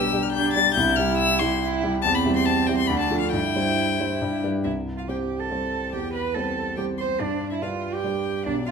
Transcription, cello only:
0.00 0.33 G4 medium
0.34 0.75 D4 medium
0.76 1.59 E4 loud
1.62 2.03 E4 medium
2.04 2.91 C4 loud
2.89 3.32 D4 medium
3.33 4.41 E4 medium
4.64 4.72 E4 medium
4.97 5.10 F4 medium
5.08 5.41 G4 medium
5.40 5.93 A4 medium
5.93 6.14 G4 medium
6.14 6.36 B4 medium
6.34 6.77 A4 medium
6.77 6.85 G4 medium
6.99 7.22 C5 medium
7.21 7.51 D4 medium
7.52 7.64 E4 medium
7.62 7.95 F4 medium
7.94 8.45 G4 medium
8.46 8.54 D4 medium
8.67 8.71 F4 medium

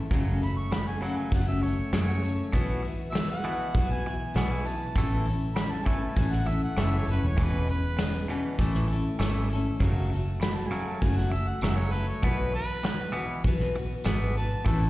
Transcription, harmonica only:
0.43 0.59 B5 medium
0.58 0.74 C#6 medium
0.72 0.86 B5 loud
0.88 1.04 G#5 medium
1.02 1.19 F#5 medium
1.17 1.31 G#5 medium
1.34 1.49 F#5 medium
1.48 1.62 E5 medium
1.63 1.92 C#5 medium
1.94 2.52 C#5 medium
3.11 3.27 E5 loud
3.30 3.88 F#5 loud
3.91 4.49 G#5 medium
4.51 4.67 G#5 medium
4.66 5.24 A5 loud
5.55 5.73 B5 loud
5.71 5.87 A5 medium
5.86 6.00 G#5 medium
6.01 6.17 A5 medium
6.16 6.33 G#5 medium
6.32 6.49 F#5 medium
6.48 6.62 E5 medium
6.64 6.81 F#5 medium
6.79 6.99 E5 medium
6.98 7.09 C#5 medium
7.11 7.29 B4 medium
7.27 7.45 C#5 medium
7.43 7.70 B4 medium
7.70 8.28 B4 medium
10.42 10.57 B5 loud
10.56 10.70 A5 loud
10.69 10.84 G#5 loud
10.88 11.03 A5 medium
11.01 11.19 G#5 medium
11.17 11.34 F#5 loud
11.32 11.50 E5 loud
11.48 11.62 F#5 medium
11.63 11.79 E5 medium
11.77 11.94 C#5 loud
11.92 12.09 B4 medium
12.08 12.26 C#5 medium
12.24 12.53 B4 medium
12.55 13.13 B4 loud
14.37 14.66 A5 loud
14.68 14.90 A5 loud

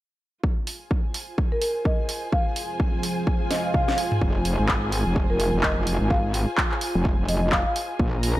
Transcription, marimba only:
1.52 1.58 A#4 medium
1.62 1.71 A#4 medium
1.85 2.06 D#5 medium
2.32 2.53 F5 medium
3.51 3.60 D#5 medium
3.65 3.71 D#5 medium
3.74 3.83 F5 medium
3.88 3.94 F5 medium
5.30 5.36 A#4 medium
5.40 5.49 A#4 medium
5.63 5.84 D#5 medium
6.10 6.31 F5 medium
7.29 7.38 D#5 medium
7.43 7.49 D#5 medium
7.52 7.61 F5 medium
7.66 7.72 F5 medium

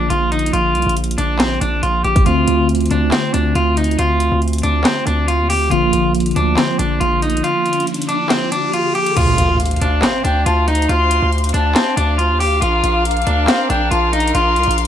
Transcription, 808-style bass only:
0.10 0.52 A#1 loud
0.53 0.77 A#1 loud
0.75 0.86 C2 loud
0.87 1.17 A#1 loud
1.18 1.60 A#1 loud
1.61 1.82 A#1 loud
1.83 2.04 A#1 loud
2.05 2.25 A#1 loud
2.26 2.47 D2 loud
2.48 2.89 D2 loud
2.91 3.12 D2 loud
3.34 3.55 D2 loud
3.55 3.97 D2 loud
3.99 4.30 D2 loud
4.32 4.62 D2 loud
4.63 4.84 D2 loud
5.07 5.41 D2 loud
5.40 5.57 D#2 loud
5.56 5.71 D2 loud
5.71 5.92 A#1 loud
5.93 6.34 A#1 loud
6.36 6.57 D2 loud
6.79 7.00 A#1 loud
7.01 7.42 A#1 loud
9.17 9.37 D2 loud
9.38 9.80 D2 loud
9.81 10.02 D2 loud
10.25 10.45 D2 loud
10.46 10.88 D2 loud
10.89 11.21 D2 loud
11.22 11.53 D2 loud
11.54 11.75 D2 loud
11.97 12.32 D2 loud
12.30 12.48 D#2 loud
12.46 12.61 D2 loud
12.62 12.83 A#1 loud
12.84 13.25 A#1 loud
13.27 13.47 D2 loud
13.70 13.91 A#1 loud
13.92 14.33 A#1 loud
14.35 14.58 A#1 loud
14.56 14.67 C2 loud
14.68 14.87 A#1 loud

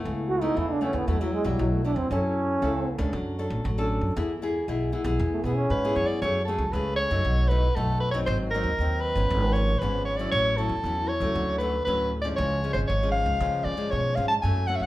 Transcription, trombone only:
0.28 0.43 F#4 medium
0.42 0.58 D#4 medium
0.57 0.73 E4 medium
0.71 0.84 D4 medium
0.82 0.97 C#4 medium
0.95 1.11 B3 medium
1.09 1.24 A3 medium
1.22 1.34 F#3 medium
1.33 1.48 G#3 loud
1.46 1.62 G3 medium
1.60 1.74 F#3 medium
1.73 1.86 A3 medium
1.84 1.98 D4 loud
1.97 2.10 C4 loud
2.11 3.10 C#4 loud
5.33 5.45 A3 medium
5.44 5.56 B3 loud
5.55 6.08 C#4 medium

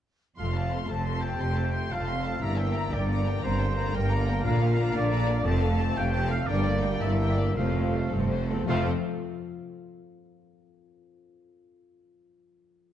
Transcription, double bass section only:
0.39 0.84 F1 soft
0.90 1.35 F1 soft
1.40 1.85 F1 medium
1.91 2.36 F1 medium
2.42 2.87 G1 medium
2.92 3.37 G1 medium
3.43 3.88 G1 medium
3.94 4.39 G1 medium
4.45 4.90 A#1 medium
4.95 5.40 A#1 medium
5.46 5.92 F1 medium
5.97 6.43 F1 medium
6.48 6.96 G1 medium
7.01 7.50 G1 medium
7.56 8.05 F1 medium
8.13 8.62 F1 medium
8.67 8.87 F1 medium

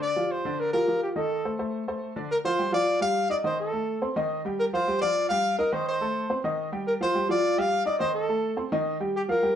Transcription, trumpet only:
0.02 0.33 D5 loud
0.31 0.61 C5 medium
0.60 0.73 A#4 medium
0.73 1.00 A#4 loud
1.03 1.09 G4 medium
1.17 1.57 A4 medium
2.31 2.38 A#4 medium
2.45 2.71 C5 loud
2.74 3.00 D5 loud
3.02 3.29 F5 loud
3.31 3.37 D5 loud
3.46 3.58 C5 loud
3.60 4.12 A4 medium
4.59 4.66 A#4 medium
4.74 5.00 C5 loud
5.02 5.28 D5 loud
5.29 5.56 F5 loud
5.58 5.74 A#4 medium
5.73 5.87 C5 medium
5.88 6.40 C5 loud
6.87 6.93 A#4 medium
7.02 7.28 C5 loud
7.31 7.61 D5 loud
7.59 7.85 F5 loud
7.86 7.99 D5 loud
7.99 8.13 C5 loud
8.14 8.67 A4 medium
9.16 9.22 G4 medium
9.30 9.55 A#4 medium

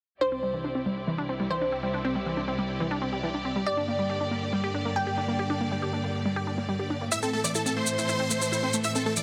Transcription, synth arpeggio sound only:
0.21 0.24 D4 medium
0.32 0.37 C4 medium
0.43 0.46 G3 medium
0.54 0.59 E3 medium
0.64 0.70 D4 medium
0.75 0.78 C4 medium
0.86 0.89 G3 medium
1.07 1.15 E3 loud
1.18 1.23 D4 medium
1.29 1.32 C4 medium
1.40 1.45 G3 medium
1.51 1.56 E3 medium
1.61 1.65 D4 medium
1.72 1.75 C4 medium
1.83 1.86 G3 medium
1.94 1.97 D4 medium
2.05 2.10 C4 loud
2.15 2.19 G3 medium
2.26 2.31 E3 medium
2.37 2.42 D4 medium
2.48 2.51 C4 medium
2.59 2.62 G3 medium
2.80 2.88 E3 loud
2.91 2.96 D4 medium
3.02 3.05 C4 medium
3.13 3.18 G3 medium
3.23 3.29 E3 medium
3.34 3.37 D4 medium
3.45 3.48 C4 medium
3.56 3.59 G3 medium
3.66 3.70 G4 medium
3.77 3.83 D4 loud
3.88 3.91 A#3 medium
3.99 4.04 G3 medium
4.10 4.15 G4 medium
4.20 4.24 D4 medium
4.31 4.34 A#3 medium
4.53 4.61 G3 loud
4.64 4.69 G4 medium
4.74 4.78 D4 medium
4.85 4.90 A#3 medium
4.96 5.01 G3 medium
5.07 5.10 G4 medium
5.18 5.21 D4 medium
5.28 5.31 A#3 medium
5.39 5.42 G4 medium
5.50 5.55 D4 loud
5.61 5.64 A#3 medium
5.71 5.77 G3 medium
5.82 5.88 G4 medium
5.93 5.96 D4 medium
6.04 6.07 A#3 medium
6.25 6.33 G3 loud
6.36 6.41 G4 loud
6.47 6.50 D4 medium
6.58 6.63 A#3 medium
6.69 6.74 G3 medium
6.79 6.83 G4 medium
6.90 6.93 D4 medium
7.01 7.04 A#3 medium
7.12 7.15 E4 medium
7.23 7.28 C4 medium
7.33 7.37 A3 medium
7.44 7.49 E3 medium
7.55 7.60 E4 medium
7.66 7.69 C4 medium
7.77 7.80 A3 medium
7.98 8.06 E3 loud
8.09 8.14 E4 loud
8.20 8.23 C4 medium
8.31 8.36 A3 medium
8.41 8.47 E3 medium
8.52 8.55 E4 medium
8.63 8.66 C4 medium
8.74 8.77 A3 medium
8.85 8.88 E4 medium
8.95 9.01 C4 loud
9.06 9.09 A3 medium
9.17 9.22 E3 medium

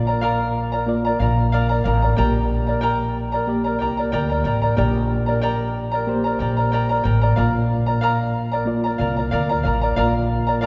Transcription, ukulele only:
0.07 0.21 A#4 soft
0.07 0.22 D5 soft
0.07 0.22 A#5 soft
0.21 0.73 A#4 medium
0.21 0.72 D5 medium
0.21 0.72 F5 medium
0.21 0.71 A#5 medium
0.72 1.06 A#4 soft
0.72 1.05 D5 soft
0.72 1.03 A#5 soft
1.05 1.19 A#4 soft
1.05 1.20 D5 soft
1.05 1.20 A#5 medium
1.19 1.52 A#4 medium
1.19 1.53 D5 medium
1.19 1.51 F5 medium
1.19 1.53 A#5 medium
1.52 1.70 A#4 medium
1.52 1.70 D5 medium
1.52 1.70 F5 medium
1.52 1.68 A#5 medium
1.69 1.84 A#4 soft
1.69 1.85 D5 soft
1.69 1.84 A#5 medium
1.84 2.03 A#4 medium
1.84 2.03 D5 medium
1.84 2.02 F5 medium
1.84 2.01 A#5 medium
2.02 2.16 A#4 soft
2.02 2.17 D5 soft
2.02 2.17 A#5 soft
2.16 2.68 A#4 medium
2.16 2.67 D5 medium
2.16 2.67 G5 medium
2.16 2.66 A#5 medium
2.67 2.81 A#4 soft
2.67 2.81 D5 soft
2.67 2.82 A#5 soft
2.81 3.32 A#4 medium
2.81 3.33 D5 medium
2.81 3.32 G5 medium
2.81 3.31 A#5 medium
3.32 3.66 A#4 soft
3.32 3.65 D5 soft
3.32 3.63 A#5 soft
3.64 3.79 A#4 soft
3.64 3.80 D5 soft
3.64 3.79 A#5 soft
3.79 3.98 A#4 medium
3.79 3.98 D5 medium
3.79 3.97 G5 medium
3.79 3.96 A#5 medium
3.97 4.11 A#4 soft
3.97 4.12 D5 soft
3.97 4.12 A#5 soft
4.12 4.30 A#4 medium
4.12 4.30 D5 medium
4.12 4.30 G5 medium
4.12 4.28 A#5 medium
4.29 4.44 A#4 soft
4.29 4.45 D5 medium
4.29 4.44 A#5 medium
4.44 4.63 A#4 medium
4.44 4.62 D5 medium
4.44 4.62 G5 medium
4.44 4.61 A#5 medium
4.62 4.76 A#4 soft
4.62 4.77 D5 soft
4.62 4.77 A#5 medium
4.76 5.28 A#4 medium
4.76 5.27 D5 medium
4.76 5.27 G5 medium
4.76 5.25 A#5 medium
5.26 5.41 A#4 soft
5.26 5.42 D5 soft
5.26 5.42 A#5 soft
5.41 5.93 A#4 medium
5.41 5.92 D5 medium
5.41 5.92 G5 medium
5.41 5.90 A#5 medium
5.92 6.26 A#4 soft
5.92 6.25 D5 soft
5.92 6.23 A#5 soft
6.24 6.39 A#4 soft
6.24 6.40 D5 soft
6.24 6.39 A#5 soft
6.39 6.58 A#4 medium
6.39 6.57 D5 medium
6.39 6.57 G5 medium
6.39 6.56 A#5 medium
6.57 6.72 A#4 soft
6.57 6.72 D5 soft
6.57 6.72 A#5 soft
6.72 6.90 A#4 medium
6.72 6.90 D5 medium
6.72 6.90 G5 medium
6.72 6.88 A#5 medium
6.89 7.04 A#4 soft
6.89 7.05 D5 soft
6.89 7.04 A#5 medium
7.04 7.23 A#4 medium
7.04 7.22 D5 medium
7.04 7.22 G5 medium
7.04 7.20 A#5 medium
7.22 7.36 A#4 soft
7.22 7.37 D5 soft
7.22 7.37 A#5 medium
7.36 7.87 A#4 medium
7.36 7.87 D5 medium
7.36 7.87 F5 medium
7.36 7.85 A#5 medium
7.86 8.01 A#4 soft
7.86 8.02 D5 soft
7.86 8.02 A#5 soft
8.01 8.52 A#4 medium
8.01 8.52 D5 medium
8.01 8.52 F5 medium
8.01 8.50 A#5 medium
8.52 8.86 A#4 soft
8.52 8.85 D5 soft
8.52 8.83 A#5 soft
8.84 8.98 A#4 soft
8.84 8.99 D5 soft
8.84 8.99 A#5 medium
8.98 9.17 A#4 medium
8.98 9.17 D5 medium
8.98 9.17 F5 medium
8.98 9.15 A#5 medium
9.17 9.31 A#4 soft
9.17 9.32 D5 soft
9.17 9.32 A#5 soft
9.31 9.50 A#4 medium
9.31 9.50 D5 medium
9.31 9.49 F5 medium
9.31 9.48 A#5 medium
9.49 9.63 A#4 soft
9.49 9.65 D5 soft
9.49 9.64 A#5 medium
9.63 9.82 A#4 medium
9.63 9.82 D5 medium
9.63 9.82 F5 medium
9.63 9.80 A#5 medium
9.81 9.96 A#4 soft
9.81 9.96 D5 soft
9.81 9.96 A#5 medium
9.96 10.47 A#4 medium
9.96 10.47 D5 medium
9.96 10.47 F5 medium
9.96 10.46 A#5 medium
10.47 10.61 A#4 soft
10.47 10.61 D5 soft
10.47 10.62 A#5 medium
10.61 10.66 A#4 medium
10.61 10.66 D5 medium
10.61 10.66 F5 medium

